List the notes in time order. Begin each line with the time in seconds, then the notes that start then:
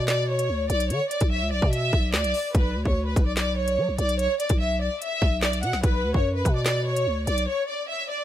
Already playing: B2
0.08 D5, snare, clap, closed hi-hat
0.29 C#5
0.39 closed hi-hat
0.49 D2
0.69 B1 D5, closed hi-hat
0.80 closed hi-hat
0.90 D3 C#5, closed hi-hat
1.10 D5, closed hi-hat
1.21 B1, kick, closed hi-hat
1.31 E5
1.42 C#2
1.52 B1 D5
1.62 B2, kick
1.72 E5, closed hi-hat
1.93 B1, kick
2.13 D2 D5, snare, clap
2.24 B1, closed hi-hat
2.34 open hi-hat
2.55 B1 B4, kick, closed hi-hat
2.75 D2
2.85 D2 C#5, kick
3.06 B4
3.16 B1, kick, closed hi-hat
3.27 D5
3.37 D5, snare, clap, closed hi-hat
3.57 C#5
3.68 closed hi-hat
3.78 F#3
3.88 B1
3.98 B1 D5, closed hi-hat
4.09 closed hi-hat
4.19 C#5, closed hi-hat
4.40 D5, closed hi-hat
4.49 B1, kick, closed hi-hat
4.60 E5
4.81 D5
5.01 E5, closed hi-hat
5.22 B1, kick
5.42 D5, snare, clap
5.53 closed hi-hat
5.63 B2 F#5, closed hi-hat
5.73 B1, snare
5.83 B1 B4, kick, closed hi-hat
6.04 D2
6.14 F#2 C#5, kick
6.35 B4
6.45 B2, kick, closed hi-hat
6.55 D5
6.66 D5, snare, clap, closed hi-hat
6.86 C#5
6.96 closed hi-hat
7.07 D2
7.27 B1 D5, closed hi-hat
7.38 closed hi-hat
7.48 C#5
7.68 D5
7.89 E5
8.09 D5